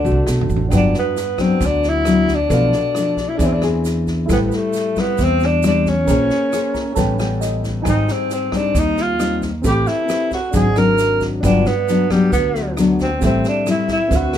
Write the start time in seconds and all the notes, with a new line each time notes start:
Already playing: D3 D4 A4 C5 F#5
0.05 C2 A3 C4 F#4, shaker
0.12 kick
0.26 B1, snare, shaker
0.41 floor tom
0.49 A1, shaker
0.56 floor tom
0.69 G1 G2 F#3 B3 D4 G5, kick, cross-stick, snare, shaker
0.73 D4 B4 F#5
0.94 snare, shaker
0.99 B3
1.16 snare, shaker
1.38 F#3 B3 C4 D4, kick, cross-stick, snare, shaker
1.60 D2 D3, kick, snare, shaker
1.66 D4
1.83 snare, shaker
1.89 E4
2.05 F#3 B3 D4, cross-stick, snare, shaker
2.28 kick, snare, shaker
2.35 D4
2.47 B1 B2 D4 A4, kick, snare, shaker
2.51 F3 A3 D4 B4 F5
2.72 snare, shaker
2.95 F3 A3 D4, cross-stick, snare, shaker
3.17 kick, snare, shaker
3.29 E4
3.35 D4 G#4, snare
3.39 E2 E3 C4 D4 G#4 C5 E5, kick, shaker
3.46 C4
3.53 D4
3.62 C4 D4 G#4, cross-stick, snare, shaker
3.85 snare, shaker
4.07 kick, snare, shaker
4.26 A1 E4 A4 C5, kick, cross-stick, snare, shaker
4.30 A2 G3 B3 C4 E4 G5
4.46 B3
4.52 A3, snare, shaker
4.73 snare, shaker
4.96 G3 B3 C4 E4, kick, cross-stick, snare, shaker
5.18 E2 E3, kick, snare, shaker
5.23 C4
5.40 snare, shaker
5.45 D4
5.63 G3 C4 D4 E4, cross-stick, snare, shaker
5.85 C#4, kick, snare, shaker
6.04 A#1 C#4 A#4, kick, snare, shaker
6.09 A#3 C#4 G#4 C5 G#5
6.30 snare, shaker
6.53 C#4 G#4 C5, cross-stick, snare, shaker
6.74 A#5, kick, snare, shaker
6.92 C#4 A4 A5, shaker
6.97 A1 A2 G3 B3 C#4 B4 G5, kick, snare
7.19 G3 B3 C#4 G5, cross-stick, snare, shaker
7.41 D#5, snare, shaker
7.63 kick, snare, shaker
7.82 G#1 G#2 G3 D#4 C5 G#5, kick, cross-stick, snare
7.86 C4 D#4 G5, shaker
8.08 C4, snare, shaker
8.30 C4, snare, shaker
8.52 G3 C4 D4 D#4, kick, cross-stick, snare, shaker
8.74 D#2 D#3, kick, snare, shaker
8.79 D#4
8.97 snare, shaker
9.02 F4
9.19 G3 C4 D#4, cross-stick, snare, shaker
9.42 kick, snare, shaker
9.62 A1 A3 C4 G4 A4 B4, kick, snare, shaker
9.66 G4 B4 G5
9.86 E4, snare, shaker
10.08 C4 G4 B4, cross-stick, snare, shaker
10.31 F#4, kick, snare, shaker
10.51 G#1 G#2 F#3 C4 D4 G#4, kick, snare, shaker
10.55 G#4 C5 F#5
10.76 F#3 C4 D4 A#4, cross-stick, snare, shaker
10.98 snare, shaker
11.21 kick, snare, shaker
11.40 G1 G2 D4 G5, kick, cross-stick, snare, shaker
11.44 F#3 B3 D4 B4 F#5
11.65 B3, snare, shaker
11.88 F#3 B3 D4, snare, shaker
12.10 F#3 G3 B3 D4, kick, cross-stick, snare, shaker
12.32 D2 D3 B3, kick, snare, shaker
12.55 snare, shaker
12.77 F#3 B3 D4, cross-stick, snare, shaker
12.99 C4, kick, snare, shaker
13.19 A1 C4 G4 A4, kick, snare, shaker
13.23 A2 G3 C4 E4 E5
13.44 snare, shaker
13.48 D4
13.67 G3 C4 E4, cross-stick, snare, shaker
13.71 E4
13.88 kick, snare, shaker
13.92 E4
14.08 D2 C4 F#4 B4, kick, snare, shaker
14.12 D3 C4 F#4 B4 E5
14.33 C4, cross-stick, snare, shaker